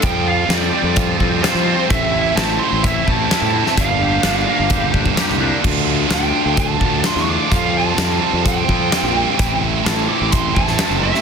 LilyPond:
<<
  \new Staff \with { instrumentName = "Lead electric guitar" } { \time 4/4 \key f \major \tempo 4 = 128 g''8 f''8 d''4 r4 c''4 | e''4 a''8 c'''8 e''8 a''4. | f''2~ f''8 r4. | r4 g''4 a''4 c'''16. cis'''32 d'''8 |
f''8 a''4. g''2~ | g''8 r8 a''8 d'''8 c'''8 a''4 e''8 | }
  \new Staff \with { instrumentName = "Clean electric guitar" } { \time 4/4 \key f \major f8 f'8 c'8 g8 f'8 c'8 f'8 c'8 | a,8 e'8 c'8 a8 e'8 c'8 e'8 c'8 | g,8 g'8 d'8 bes8 g'8 d'8 g'8 d'8 | r1 |
r1 | r1 | }
  \new Staff \with { instrumentName = "Overdriven electric guitar" } { \time 4/4 \key f \major <f g c' f'>8 <g c' f'>8 <f g c' f'>4. <g c' f'>8 <f g c' f'>8 <g c' f'>8 | <a, e a c' e'>8 <a c' e'>8 <e a c' e'>4. <a c' e'>8 <a, e a c' e'>8 <a c' e'>8 | <g, d g bes d'>8 <g bes d'>8 <d g bes d'>4. <g bes d'>8 <g, d g bes d'>8 <g bes d'>8 | <d a d' f'>8 <a d' f'>8 <d a d' f'>4. <a d' f'>8 <d a d' f'>8 <a d' f'>8 |
<f g c' f'>8 <g c' f'>8 <f g c' f'>4. <g c' f'>8 <f g c' f'>8 <g c' f'>8 | <a, e a c' e'>8 <a c' e'>8 <e a c' e'>4. <a c' e'>8 <a, e a c' e'>8 <a c' e'>8 | }
  \new Staff \with { instrumentName = "Distorted electric guitar" } { \time 4/4 \key f \major <f g c' f'>4 <f g c' f'>8 <g c' f'>8 <f g c' f'>4 <f g c' f'>8 <g c' f'>8 | <a, e a c' e'>4 <e a c' e'>8 <a c' e'>8 <a, e a c' e'>4 <e a c' e'>8 <a c' e'>8 | <g, d g bes d'>4 <d g bes d'>8 <g bes d'>8 <g, d g bes d'>4 <d g bes d'>8 <g bes d'>8 | <d a d' f'>4 <d a d' f'>8 <a d' f'>8 <d a d' f'>4 <d a d' f'>8 <a d' f'>8 |
<f g c' f'>4 <f g c' f'>8 <g c' f'>8 <f g c' f'>4 <f g c' f'>8 <g c' f'>8 | <a, e a c' e'>4 <e a c' e'>8 <a c' e'>8 <a, e a c' e'>4 <e a c' e'>8 <a c' e'>8 | }
  \new Staff \with { instrumentName = "Fingered electric bass" } { \clef bass \time 4/4 \key f \major f,4 f,8 r16 f,8. f,8 r16 f8 r16 | a,,4 a,,8 r16 a,,8. a,,8 r16 a,8 r16 | g,,4 g,,8 r16 g,,8. g,,8 r16 c,8 r16 | d,4 d,8 r16 d,8. d,8 r16 e,8 r16 |
f,4 f,8 r16 f,8. f,8 r16 bes,,8 r16 | a,,4 a,,8 r16 a,,8. a,,8 r16 fis,,8 r16 | }
  \new DrumStaff \with { instrumentName = "Drums" } \drummode { \time 4/4 <hh bd>4 <hh sn>4 <hh bd>8 bd8 <hh sn>16 sn8. | <hh bd>4 <hh sn>4 <hh bd>8 bd8 <hh sn>8. sn16 | <hh bd>4 <hh sn>4 <hh bd>8 bd16 bd16 <hh sn>16 sn8. | <cymc bd>4 <hh sn>4 <hh bd>8 bd8 <hh sn>16 sn8. |
<hh bd>4 <hh sn>4 <hh bd>8 bd8 <hh sn>4 | <hh bd>4 <hh sn>4 <hh bd>8 bd16 sn16 <hh sn>8. sn16 | }
>>